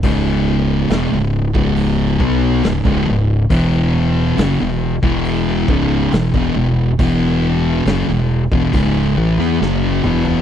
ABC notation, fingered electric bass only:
X:1
M:4/4
L:1/16
Q:1/4=69
K:E
V:1 name="Fingered electric bass" clef=bass
C,,,4 E,,, C,,,2 C,,,3 B,,,2 C,,, C,,, C,,,2 | E,,,4 F,,, E,,,2 E,,,3 C,,,2 E,,, E,,, E,,,2 | E,,,4 F,,, E,,,2 E,,, C,,,2 A,,, E,, F,,,2 E,,,2 |]